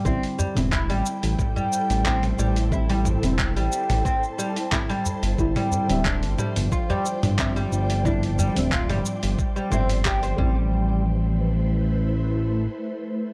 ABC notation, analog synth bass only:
X:1
M:4/4
L:1/16
Q:1/4=90
K:Am
V:1 name="Analog synth bass" clef=bass
A,,, z2 E,,,2 A,,, z A,,, z3 A,,,3 A,,,2- | A,,,3 E,,,2 A,,, z A,,, z6 z G,,, | G,,, z2 D,,,2 G,,, z G,,, z3 G,,,3 G,,,2- | G,,,3 D,,,2 G,,, z G,,, z2 G,,,4 A,,,2- |
A,,,12 z4 |]